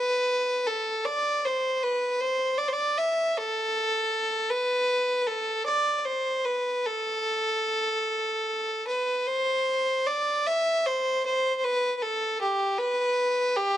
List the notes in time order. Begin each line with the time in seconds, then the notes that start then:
Already playing: B4
0.66 A4
1.05 D5
1.45 C5
1.83 B4
2.21 C5
2.58 D5
2.68 C5
2.73 D5
2.98 E5
3.37 A4
4.50 B4
5.21 B4
5.27 A4
5.66 D5
5.98 D5
6.05 C5
6.45 B4
6.86 A4
8.87 B4
9.27 C5
10.07 D5
10.47 E5
10.86 C5
11.26 C5
11.57 C5
11.64 B4
11.97 B4
12.03 A4
12.41 G4
12.78 B4
13.56 G4